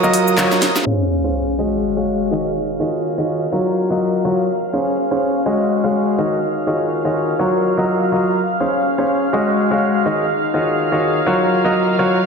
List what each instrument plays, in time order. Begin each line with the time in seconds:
Already playing: violin section D#5 D#6
0.03 grand piano F#3 F4 F#4 A#4 D#5, shaker
0.14 open hi-hat
0.28 shaker
0.38 grand piano F#3 F4 F#4 A#4 C#5, snare, clap, shaker
0.51 snare, shaker
0.62 snare, open hi-hat
0.76 snare, shaker
0.86 grand piano C#4 G#4 C5 C#5 F5, violin section F5 F6, sub drop
1.24 grand piano C#4 G#4 C5 C#5 F5
1.59 grand piano G#3 F#4 G#4 C#5 D#5
1.97 grand piano G#3 F#4 G#4 C#5 F5
2.31 grand piano D#3 F#4 G#4 C#5 D#5
2.80 grand piano D#3 F4 F#4 G#4 C#5 D#5
3.18 grand piano D#3 F4 F#4 G#4 C#5 D#5
3.52 grand piano F#3 F4 F#4 A#4 C#5
3.90 grand piano F#3 F4 F#4 A#4 D#5
4.25 grand piano F#3 F4 F#4 A#4 C#5
4.73 grand piano C#4 G#4 C5 C#5 F5
5.11 grand piano C#4 G#4 C5 C#5 F5
5.46 grand piano G#3 F#4 G#4 C#5 D#5
5.84 grand piano G#3 F#4 G#4 C#5 F5
6.18 grand piano D#3 F#4 G#4 C#5 D#5
6.67 grand piano D#3 F4 F#4 G#4 C#5 D#5
7.05 grand piano D#3 F4 F#4 G#4 C#5 D#5
7.39 grand piano F#3 F4 F#4 A#4 C#5
7.77 grand piano F#3 F4 F#4 A#4 D#5
8.12 grand piano F#3 F4 F#4 A#4 D#5
8.60 grand piano C#4 G#4 C5 C#5 F5
8.98 grand piano C#4 G#4 C5 C#5 F5
9.33 grand piano G#3 F#4 G#4 C#5 D#5
9.71 grand piano G#3 F#4 G#4 C#5 F5
10.05 grand piano D#3 F#4 G#4 C#5 D#5
10.54 grand piano D#3 F4 F#4 G#4 C#5 D#5
10.92 grand piano D#3 F4 F#4 G#4 C#5 D#5
11.26 grand piano F#3 F4 F#4 A#4 C#5
11.64 grand piano F#3 F4 F#4 A#4 D#5
11.99 grand piano F#3 F4 F#4 A#4 C#5